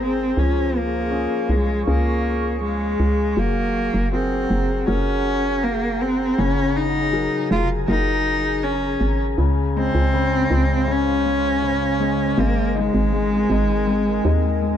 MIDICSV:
0, 0, Header, 1, 5, 480
1, 0, Start_track
1, 0, Key_signature, -5, "major"
1, 0, Tempo, 750000
1, 245, Time_signature, 4, 2, 24, 8
1, 9453, End_track
2, 0, Start_track
2, 0, Title_t, "Ambient pad"
2, 0, Program_c, 0, 92
2, 0, Note_on_c, 0, 68, 73
2, 0, Note_on_c, 0, 72, 58
2, 0, Note_on_c, 0, 82, 77
2, 221, Note_off_c, 0, 72, 0
2, 222, Note_off_c, 0, 82, 0
2, 244, Note_on_c, 0, 85, 72
2, 245, Note_on_c, 0, 77, 61
2, 2146, Note_off_c, 0, 77, 0
2, 2146, Note_off_c, 0, 85, 0
2, 2172, Note_on_c, 0, 78, 65
2, 2172, Note_on_c, 0, 82, 73
2, 4070, Note_off_c, 0, 78, 0
2, 4092, Note_on_c, 0, 80, 64
2, 5975, Note_off_c, 0, 68, 0
2, 5983, Note_off_c, 0, 82, 0
2, 5989, Note_off_c, 0, 80, 0
2, 6005, Note_on_c, 0, 77, 71
2, 6008, Note_on_c, 0, 72, 70
2, 6009, Note_on_c, 0, 49, 78
2, 7906, Note_off_c, 0, 77, 0
2, 7907, Note_off_c, 0, 72, 0
2, 7908, Note_off_c, 0, 49, 0
2, 7921, Note_on_c, 0, 80, 76
2, 7923, Note_on_c, 0, 70, 69
2, 7929, Note_on_c, 0, 60, 76
2, 9453, Note_off_c, 0, 60, 0
2, 9453, Note_off_c, 0, 70, 0
2, 9453, Note_off_c, 0, 80, 0
2, 9453, End_track
3, 0, Start_track
3, 0, Title_t, "Grand piano"
3, 0, Program_c, 1, 0
3, 0, Control_c, 1, 64, 127
3, 0, Note_on_c, 1, 56, 42
3, 0, Note_on_c, 1, 68, 41
3, 0, Note_on_c, 1, 70, 37
3, 0, Note_on_c, 1, 72, 44
3, 218, Note_off_c, 1, 56, 0
3, 238, Note_on_c, 1, 53, 54
3, 253, Control_c, 1, 64, 0
3, 255, Note_off_c, 1, 68, 0
3, 255, Note_off_c, 1, 70, 0
3, 256, Note_off_c, 1, 72, 0
3, 348, Control_c, 1, 64, 127
3, 712, Note_on_c, 1, 61, 38
3, 714, Note_on_c, 1, 65, 37
3, 718, Note_on_c, 1, 68, 45
3, 1184, Note_off_c, 1, 61, 0
3, 1185, Note_off_c, 1, 65, 0
3, 1187, Note_off_c, 1, 68, 0
3, 1197, Note_on_c, 1, 61, 40
3, 1200, Note_on_c, 1, 65, 39
3, 1205, Note_on_c, 1, 68, 51
3, 1667, Note_off_c, 1, 61, 0
3, 1668, Note_off_c, 1, 65, 0
3, 1671, Note_off_c, 1, 68, 0
3, 2136, Note_off_c, 1, 53, 0
3, 2157, Note_on_c, 1, 54, 48
3, 2174, Control_c, 1, 64, 0
3, 2273, Control_c, 1, 64, 127
3, 2642, Note_on_c, 1, 66, 37
3, 2645, Note_on_c, 1, 68, 41
3, 2647, Note_on_c, 1, 70, 45
3, 3108, Note_off_c, 1, 66, 0
3, 3111, Note_off_c, 1, 68, 0
3, 3112, Note_off_c, 1, 70, 0
3, 3117, Note_on_c, 1, 66, 47
3, 3121, Note_on_c, 1, 68, 39
3, 3126, Note_on_c, 1, 70, 49
3, 3587, Note_off_c, 1, 66, 0
3, 3589, Note_off_c, 1, 68, 0
3, 3591, Note_off_c, 1, 70, 0
3, 4056, Note_off_c, 1, 54, 0
3, 4087, Note_on_c, 1, 49, 58
3, 4562, Note_on_c, 1, 54, 44
3, 4564, Note_on_c, 1, 68, 43
3, 4568, Note_on_c, 1, 70, 43
3, 5029, Note_off_c, 1, 54, 0
3, 5030, Note_off_c, 1, 68, 0
3, 5032, Note_off_c, 1, 70, 0
3, 5044, Note_on_c, 1, 66, 39
3, 5045, Note_on_c, 1, 68, 39
3, 5050, Note_on_c, 1, 70, 47
3, 5510, Note_off_c, 1, 66, 0
3, 5511, Note_off_c, 1, 68, 0
3, 5513, Note_off_c, 1, 70, 0
3, 5980, Note_off_c, 1, 49, 0
3, 6007, Note_on_c, 1, 49, 55
3, 6013, Control_c, 1, 64, 0
3, 6144, Control_c, 1, 64, 127
3, 6250, Note_on_c, 1, 56, 55
3, 6478, Note_off_c, 1, 49, 0
3, 6487, Note_on_c, 1, 49, 54
3, 6717, Note_off_c, 1, 56, 0
3, 6726, Note_on_c, 1, 56, 52
3, 6952, Note_off_c, 1, 49, 0
3, 6962, Note_on_c, 1, 49, 55
3, 7193, Note_off_c, 1, 56, 0
3, 7203, Note_on_c, 1, 56, 50
3, 7429, Note_off_c, 1, 49, 0
3, 7438, Note_on_c, 1, 49, 46
3, 7671, Note_off_c, 1, 56, 0
3, 7681, Note_on_c, 1, 56, 53
3, 7907, Note_off_c, 1, 49, 0
3, 7912, Note_off_c, 1, 56, 0
3, 7921, Note_on_c, 1, 56, 61
3, 7932, Control_c, 1, 64, 0
3, 8064, Control_c, 1, 64, 127
3, 8161, Note_on_c, 1, 63, 57
3, 8392, Note_off_c, 1, 56, 0
3, 8401, Note_on_c, 1, 56, 58
3, 8638, Note_off_c, 1, 63, 0
3, 8647, Note_on_c, 1, 63, 55
3, 8870, Note_off_c, 1, 56, 0
3, 8879, Note_on_c, 1, 56, 58
3, 9111, Note_off_c, 1, 63, 0
3, 9120, Note_on_c, 1, 63, 55
3, 9348, Note_off_c, 1, 56, 0
3, 9357, Note_on_c, 1, 56, 55
3, 9453, Note_off_c, 1, 56, 0
3, 9453, Note_off_c, 1, 63, 0
3, 9453, End_track
4, 0, Start_track
4, 0, Title_t, "Cello"
4, 0, Program_c, 2, 42
4, 11, Note_on_c, 2, 60, 76
4, 248, Note_on_c, 2, 61, 74
4, 258, Note_off_c, 2, 60, 0
4, 485, Note_on_c, 2, 58, 70
4, 494, Note_off_c, 2, 61, 0
4, 961, Note_on_c, 2, 56, 77
4, 971, Note_off_c, 2, 58, 0
4, 1200, Note_off_c, 2, 56, 0
4, 1204, Note_on_c, 2, 58, 79
4, 1659, Note_off_c, 2, 58, 0
4, 1686, Note_on_c, 2, 56, 78
4, 2165, Note_on_c, 2, 58, 89
4, 2175, Note_off_c, 2, 56, 0
4, 2642, Note_off_c, 2, 58, 0
4, 2646, Note_on_c, 2, 60, 77
4, 3100, Note_off_c, 2, 60, 0
4, 3123, Note_on_c, 2, 61, 97
4, 3606, Note_on_c, 2, 58, 86
4, 3616, Note_off_c, 2, 61, 0
4, 3847, Note_on_c, 2, 60, 81
4, 3857, Note_off_c, 2, 58, 0
4, 4088, Note_on_c, 2, 61, 96
4, 4098, Note_off_c, 2, 60, 0
4, 4329, Note_on_c, 2, 63, 94
4, 4339, Note_off_c, 2, 61, 0
4, 4804, Note_off_c, 2, 63, 0
4, 4808, Note_on_c, 2, 65, 87
4, 4916, Note_off_c, 2, 65, 0
4, 5042, Note_on_c, 2, 63, 100
4, 5526, Note_on_c, 2, 61, 84
4, 5535, Note_off_c, 2, 63, 0
4, 5886, Note_off_c, 2, 61, 0
4, 6260, Note_on_c, 2, 60, 100
4, 6978, Note_on_c, 2, 61, 99
4, 6988, Note_off_c, 2, 60, 0
4, 7929, Note_on_c, 2, 58, 97
4, 7938, Note_off_c, 2, 61, 0
4, 8171, Note_on_c, 2, 56, 91
4, 8181, Note_off_c, 2, 58, 0
4, 9453, Note_off_c, 2, 56, 0
4, 9453, End_track
5, 0, Start_track
5, 0, Title_t, "FM bass"
5, 0, Program_c, 3, 39
5, 0, Note_on_c, 3, 32, 101
5, 218, Note_off_c, 3, 32, 0
5, 238, Note_on_c, 3, 37, 84
5, 816, Note_off_c, 3, 37, 0
5, 956, Note_on_c, 3, 36, 78
5, 1183, Note_off_c, 3, 36, 0
5, 1201, Note_on_c, 3, 37, 103
5, 1897, Note_off_c, 3, 37, 0
5, 1918, Note_on_c, 3, 37, 81
5, 2145, Note_off_c, 3, 37, 0
5, 2156, Note_on_c, 3, 30, 92
5, 2495, Note_off_c, 3, 30, 0
5, 2522, Note_on_c, 3, 30, 95
5, 2859, Note_off_c, 3, 30, 0
5, 2882, Note_on_c, 3, 30, 97
5, 3107, Note_off_c, 3, 30, 0
5, 3122, Note_on_c, 3, 30, 103
5, 4058, Note_off_c, 3, 30, 0
5, 4087, Note_on_c, 3, 30, 102
5, 4661, Note_off_c, 3, 30, 0
5, 4806, Note_on_c, 3, 29, 102
5, 5029, Note_off_c, 3, 29, 0
5, 5045, Note_on_c, 3, 30, 104
5, 5740, Note_off_c, 3, 30, 0
5, 5764, Note_on_c, 3, 32, 88
5, 5988, Note_off_c, 3, 32, 0
5, 6003, Note_on_c, 3, 37, 99
5, 6339, Note_off_c, 3, 37, 0
5, 6366, Note_on_c, 3, 37, 92
5, 6700, Note_off_c, 3, 37, 0
5, 6724, Note_on_c, 3, 37, 106
5, 7899, Note_off_c, 3, 37, 0
5, 7922, Note_on_c, 3, 32, 111
5, 8258, Note_off_c, 3, 32, 0
5, 8284, Note_on_c, 3, 32, 101
5, 8619, Note_off_c, 3, 32, 0
5, 8638, Note_on_c, 3, 32, 105
5, 9096, Note_off_c, 3, 32, 0
5, 9119, Note_on_c, 3, 39, 103
5, 9453, Note_off_c, 3, 39, 0
5, 9453, End_track
0, 0, End_of_file